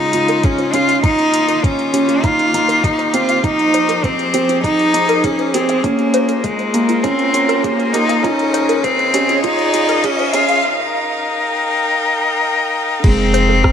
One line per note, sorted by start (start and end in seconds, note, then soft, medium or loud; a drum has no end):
0.00 1.01 C#2 medium
0.00 1.05 C#3 medium
0.00 1.04 G#3 medium
0.00 0.46 D#4 loud
0.00 2.00 D#4 medium
0.00 4.34 F4 medium
0.13 0.61 F4 medium
0.13 closed hi-hat medium
0.28 0.38 A#4 loud
0.28 closed hi-hat soft
0.43 0.76 C#4 loud
0.43 0.58 G#4 medium
0.43 kick loud
0.43 closed hi-hat soft
0.58 0.73 C5 medium
0.58 closed hi-hat soft
0.74 0.97 C#4 medium
0.74 1.03 F4 loud
0.74 0.88 G4 medium
0.74 closed hi-hat medium
0.88 0.98 F5 medium
0.88 closed hi-hat soft
1.03 3.41 D#1 medium
1.03 3.44 D#3 medium
1.03 1.51 D#4 medium
1.03 1.66 D#4 loud
1.03 1.10 F4 medium
1.03 kick medium
1.03 closed hi-hat soft
1.17 4.40 A#3 medium
1.17 closed hi-hat soft
1.34 closed hi-hat medium
1.42 6.80 G4 medium
1.48 1.58 A#4 medium
1.48 closed hi-hat soft
1.63 2.26 C#4 medium
1.63 1.73 C5 medium
1.63 kick loud
1.63 closed hi-hat soft
1.79 closed hi-hat soft
1.93 2.17 C#4 medium
1.93 2.08 G4 medium
1.93 closed hi-hat medium
2.08 2.22 F4 medium
2.08 closed hi-hat soft
2.24 2.48 D#4 medium
2.24 2.29 F4 medium
2.24 2.85 F4 loud
2.24 kick medium
2.24 closed hi-hat soft
2.39 closed hi-hat soft
2.54 3.01 D#4 medium
2.54 closed hi-hat medium
2.69 2.78 A#4 medium
2.69 closed hi-hat soft
2.83 3.16 D#4 medium
2.83 2.98 G4 medium
2.83 kick loud
2.83 closed hi-hat soft
2.99 3.13 C5 medium
2.99 closed hi-hat soft
3.14 3.38 C4 medium
3.14 3.45 F4 medium
3.14 3.28 G4 medium
3.14 closed hi-hat medium
3.29 3.39 F5 medium
3.29 closed hi-hat soft
3.44 5.81 F1 medium
3.44 5.84 F3 medium
3.44 3.91 D#4 medium
3.44 4.06 D#4 loud
3.44 3.50 F4 medium
3.44 kick loud
3.44 closed hi-hat soft
3.44 riser medium
3.53 5.84 C5 medium
3.59 closed hi-hat soft
3.74 3.84 C5 loud
3.74 closed hi-hat medium
3.89 3.98 A#4 medium
3.89 closed hi-hat soft
4.04 4.63 C4 medium
4.04 4.14 C5 medium
4.04 kick loud
4.04 closed hi-hat soft
4.08 6.80 G#4 medium
4.19 closed hi-hat soft
4.34 4.58 C4 medium
4.34 4.48 G4 medium
4.34 closed hi-hat medium
4.49 4.63 F4 medium
4.49 closed hi-hat soft
4.64 5.25 D#4 loud
4.64 4.88 D#4 medium
4.64 4.70 F4 medium
4.64 kick medium
4.64 closed hi-hat soft
4.79 closed hi-hat soft
4.94 5.41 D#4 medium
4.94 closed hi-hat medium
5.09 5.18 A#4 loud
5.09 closed hi-hat soft
5.24 5.55 C#4 medium
5.24 5.38 G#4 medium
5.24 kick loud
5.24 closed hi-hat soft
5.39 5.53 C5 medium
5.39 closed hi-hat soft
5.54 5.85 C4 medium
5.54 5.78 C4 medium
5.54 5.68 G4 medium
5.54 closed hi-hat medium
5.69 5.79 F5 medium
5.69 closed hi-hat soft
5.84 8.21 A#1 medium
5.84 6.45 A#3 medium
5.84 9.15 A#3 medium
5.84 6.31 C#4 medium
5.84 5.90 F4 medium
5.84 kick loud
5.84 closed hi-hat soft
5.99 9.20 F4 medium
5.99 closed hi-hat soft
6.14 9.20 A#4 medium
6.14 6.24 C5 loud
6.14 closed hi-hat medium
6.29 6.38 A#4 medium
6.29 closed hi-hat soft
6.43 7.04 G#3 medium
6.43 6.54 C5 medium
6.43 kick medium
6.43 closed hi-hat soft
6.53 9.20 C5 medium
6.59 closed hi-hat soft
6.74 6.98 A#3 medium
6.74 6.88 G4 medium
6.74 closed hi-hat medium
6.89 7.03 F4 medium
6.89 closed hi-hat soft
7.03 7.64 C4 medium
7.03 7.27 C#4 medium
7.03 7.10 F4 medium
7.03 kick medium
7.03 closed hi-hat soft
7.19 closed hi-hat soft
7.34 7.81 C#4 medium
7.34 closed hi-hat medium
7.49 7.58 A#4 loud
7.49 closed hi-hat soft
7.63 7.94 A#3 medium
7.63 7.78 G#4 medium
7.63 kick loud
7.63 closed hi-hat soft
7.79 7.93 C5 medium
7.79 closed hi-hat soft
7.93 8.18 A#3 medium
7.93 8.25 D#4 loud
7.93 8.08 G4 medium
7.93 closed hi-hat medium
8.09 8.18 F5 medium
8.09 closed hi-hat soft
8.23 10.61 C#2 medium
8.23 11.61 C#3 medium
8.23 8.86 C#4 medium
8.23 8.71 D#4 medium
8.23 8.30 F4 medium
8.23 kick medium
8.23 closed hi-hat soft
8.36 10.64 G#4 medium
8.36 closed hi-hat soft
8.54 8.63 C5 loud
8.54 closed hi-hat medium
8.69 8.78 A#4 medium
8.69 closed hi-hat soft
8.81 9.44 C4 loud
8.81 8.94 C5 medium
8.81 11.61 D#5 medium
8.81 kick medium
8.81 closed hi-hat soft
8.86 13.72 F5 medium
8.99 closed hi-hat soft
9.14 9.38 C#4 medium
9.14 9.28 G4 medium
9.14 closed hi-hat medium
9.29 9.43 F4 medium
9.29 closed hi-hat soft
9.44 10.06 D#4 loud
9.44 9.68 F4 medium
9.44 9.50 F4 medium
9.44 kick loud
9.44 closed hi-hat soft
9.59 closed hi-hat soft
9.74 10.21 F4 medium
9.74 closed hi-hat medium
9.89 9.98 A#4 loud
9.89 closed hi-hat soft
10.04 10.35 C#4 loud
10.04 10.18 G#4 medium
10.04 kick loud
10.04 closed hi-hat soft
10.19 10.33 C5 medium
10.19 closed hi-hat soft
10.33 10.58 C#4 medium
10.33 10.64 F4 medium
10.33 10.48 G4 medium
10.33 closed hi-hat medium
10.49 10.58 F5 medium
10.49 closed hi-hat soft
10.64 13.72 D#4 medium
10.74 13.72 A#4 medium
11.32 13.72 G5 medium
13.04 13.72 F1 loud
13.04 13.72 F3 medium
13.04 13.52 G#3 medium
13.04 13.72 C4 loud
13.04 13.10 F4 medium
13.04 kick loud
13.04 crash loud
13.34 13.43 C5 loud
13.34 13.72 C5 medium
13.34 closed hi-hat medium
13.49 13.58 A#4 medium
13.54 13.72 G4 medium
13.64 13.72 C4 medium
13.64 13.72 C5 medium
13.64 kick loud
13.64 cross-stick medium